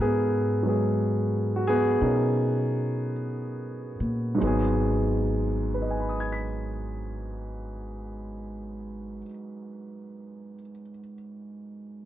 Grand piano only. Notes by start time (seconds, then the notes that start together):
Already playing: B3 C#4 F#4 A4 A#4 B4
0.01 B3 G#4
0.63 F#3 G#3 B4
0.69 G#4
1.56 F#4
1.67 B3 G#4
2.01 C#4 D#4 A#4
4.35 G#2 F#3
4.40 G#3 B3
4.47 G#4
5.74 B4
5.82 D#5
5.91 G#5
6.00 B5
6.09 D#6
6.20 G#6
6.32 B6